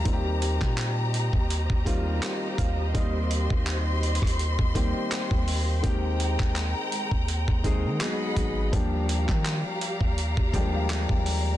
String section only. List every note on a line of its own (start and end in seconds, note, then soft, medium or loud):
0.00 5.80 G4 medium
0.00 2.91 A#5 medium
0.05 7.97 C5 medium
0.05 5.80 D#5 medium
2.95 5.81 C6 medium
5.84 7.98 G#3 medium
5.84 7.98 G5 medium
5.84 7.98 A#5 medium
8.00 8.72 G#4 medium
8.00 8.72 D#5 medium
8.00 8.72 F#5 medium
8.00 8.72 B5 medium
8.72 11.57 G4 medium
8.72 11.57 D5 medium
8.72 11.57 F5 medium
8.72 11.57 A#5 medium